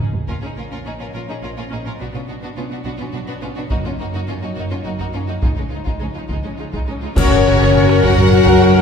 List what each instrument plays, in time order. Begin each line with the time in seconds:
0.13 taiko low
0.28 double bass section A#1, cello section A#2, french horn section F3 C#4, viola section C#4, violin section F4 A#4, taiko
0.42 cello section A#2, viola section C#4, violin section D#4 G#4
0.56 double bass section A#1, cello section A#2, viola section C#4, violin section F4 A#4
0.71 cello section A#2, viola section C#4, violin section F4 A#4
0.85 double bass section A#1, cello section A#2, viola section C#4, violin section D#4 G#4
0.99 cello section A#2, viola section C#4, violin section F4 A#4
1.14 double bass section A#1, cello section A#2, viola section C#4, violin section F4 A#4
1.28 cello section A#2, viola section C#4, violin section D#4 G#4
1.42 double bass section A#1, cello section A#2, viola section C#4, violin section F4 A#4
1.56 cello section A#2, viola section C#4, violin section F4 A#4
1.70 double bass section A#1, cello section A#2, viola section C#4, violin section D#4 G#4
1.84 cello section A#2, viola section C#4, violin section F4 A#4
1.99 double bass section B1, cello section B2, french horn section F#3 D4, viola section B3, violin section D4 F#4
2.13 cello section B2, viola section B3, violin section C#4 F4
2.28 double bass section B1, cello section B2, viola section B3, violin section D4 F#4
2.42 cello section B2, viola section B3, violin section D4 F#4
2.56 double bass section B1, cello section B2, viola section B3, violin section C#4 F4
2.69 cello section B2, viola section B3, violin section D4 F#4
2.85 double bass section B1, cello section B2, viola section B3, violin section D4 F#4
2.98 cello section B2, viola section B3, violin section C#4 F4
3.13 double bass section B1, cello section B2, viola section B3, violin section D4 F#4
3.27 cello section B2, viola section B3, violin section D4 F#4
3.41 double bass section B1, cello section B2, viola section B3, violin section C#4 F4
3.56 cello section B2, viola section B3, violin section D4 F#4
3.68 double bass section F#1, cello section F#2, viola section A#3, french horn section D#4, violin section D#4 F#4, taiko
3.85 cello section F#2, viola section A#3, violin section C#4 F4
3.99 double bass section F#1, cello section F#2, viola section A#3, violin section D#4 F#4
4.13 cello section F#2, viola section A#3, violin section D#4 F#4
4.27 double bass section F#1, cello section F#2, viola section A#3, violin section C#4 F4
4.42 cello section F#2, viola section A#3, violin section D#4 F#4
4.55 double bass section F#1, cello section F#2, viola section A#3, violin section D#4 F#4
4.70 cello section F#2, viola section A#3, violin section C#4 F4
4.84 double bass section F#1, cello section F#2, viola section A#3, violin section D#4 F#4
4.99 cello section F#2, viola section A#3, violin section D#4 F#4, taiko
5.14 double bass section F#1, cello section F#2, viola section A#3, violin section C#4 F4
5.27 cello section F#2, viola section A#3, violin section D#4 F#4
5.42 double bass section C#2, cello section C#2, french horn section F3, viola section G#3, violin section D#4 F4, taiko
5.56 cello section C#2, viola section G#3, violin section C#4 D#4
5.69 double bass section C#2, cello section C#2, viola section G#3, violin section F4
5.74 violin section D#4
5.84 cello section C#2, viola section G#3, violin section D#4 F4, taiko
5.99 double bass section C#2, cello section C#2, viola section G#3, violin section C#4 D#4
6.14 cello section C#2, viola section G#3, violin section D#4 F4
6.28 double bass section C#2, cello section C#2, viola section G#3, violin section D#4 F4, taiko
6.43 cello section C#2, viola section G#3, violin section C#4 D#4
6.57 cello section C#2, double bass section C#2, viola section G#3, violin section D#4 F4
6.72 cello section C#2, viola section G#3, violin section D#4 F4, taiko
6.87 cello section C#2, double bass section C#2, viola section G#3, violin section C#4 D#4
7.01 cello section C#2, viola section G#3, violin section D#4 F4
7.15 double bass section F#1, cello section C#3, trombone section F#3 C#4, string section C#4 F#4 A#4 C#5, french horn section C#4, violin section F#4 C#5, viola section F#4 A#4, trumpet section A#4, flute C#5, concert bass drum, taiko, crash, impact
7.31 viola section F#4 A#4, violin section A#4 F#5, taiko low-mid
7.46 viola section F#4 A#4, violin section F#4 C#5
7.60 viola section F#4 A#4, violin section A#4 F#5
7.75 viola section F#4 A#4, violin section F#4 C#5, taiko low-mid
7.89 viola section F#4 A#4, violin section A#4 F#5, taiko rim
8.02 cello section F#3, french horn section F#4, viola section F#4 A#4, violin section F#4 C#5 F#5, flute F#5, taiko
8.18 viola section F#4 A#4, violin section A#4 F#5, taiko low-mid
8.32 viola section F#4 A#4, violin section F#4 C#5, taiko low-mid
8.46 viola section F#4 A#4, violin section A#4 F#5, taiko
8.61 violin section F#4 C#5, viola section F#4 A#4
8.76 viola section F#4 A#4, violin section A#4 F#5